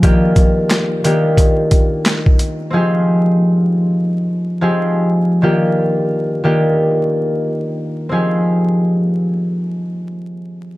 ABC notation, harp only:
X:1
M:4/4
L:1/16
Q:"Swing 16ths" 1/4=89
K:Fdor
V:1 name="Harp"
[E,B,DFG]6 [E,B,DFG]8- [E,B,DFG] z | [F,CEGA]8- [F,CEGA] z2 [F,CEGA]3 z2 | [E,B,DFG]6 [E,B,DFG]8- [E,B,DFG] z | [F,CEGA]16 |]